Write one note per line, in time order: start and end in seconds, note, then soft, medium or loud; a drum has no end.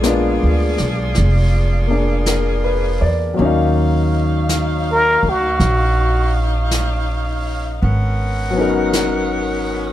0.00 0.37 A#1 medium
0.00 3.36 G#3 soft
0.00 1.86 A#3 soft
0.00 3.37 B3 soft
0.00 3.20 F4 medium
0.00 3.20 G#4 medium
0.00 3.39 C5 soft
0.00 3.20 D5 medium
0.00 brush sweep soft
0.00 snare soft
0.00 hi-hat pedal medium
0.05 1.89 D4 soft
0.05 3.39 F4 medium
0.43 0.77 D2 medium
0.78 1.14 B1 medium
0.78 snare soft
1.15 2.97 F1 medium
1.15 brush sweep soft
1.15 snare soft
1.87 3.35 A#3 soft
1.87 3.39 D4 soft
1.87 2.48 G#4 soft
2.26 2.97 A#4 soft
2.26 brush sweep soft
2.26 snare soft
2.26 hi-hat pedal medium
2.64 3.21 B4 soft
3.01 3.36 E2 medium
3.01 3.58 D5 soft
3.34 7.81 F#3 soft
3.34 7.82 A#3 soft
3.34 7.78 D#4 medium
3.34 7.78 C#5 medium
3.34 7.78 F5 medium
3.34 brush sweep soft
3.39 5.19 D#2 medium
3.39 7.83 C#4 soft
3.39 7.85 D#4 soft
3.45 7.86 F5 medium
4.49 brush sweep soft
4.49 snare soft
4.49 hi-hat pedal soft
4.92 5.31 A#4 medium
5.23 5.58 D2 medium
5.29 6.37 F#4 medium
5.60 7.78 A#1 medium
5.60 brush sweep soft
5.60 snare soft
6.71 brush sweep soft
6.71 snare soft
6.71 hi-hat pedal medium
7.82 9.93 G#1 medium
7.82 9.93 B3 medium
7.82 9.93 C#4 medium
7.82 9.93 A#4 medium
7.82 9.93 F#5 medium
7.82 brush sweep soft
8.51 9.93 F#3 medium
8.51 9.93 B3 soft
8.56 9.93 C#4 soft
8.56 9.93 D#4 soft
8.61 9.93 A#4 medium
8.93 brush sweep soft
8.93 snare soft
8.93 hi-hat pedal medium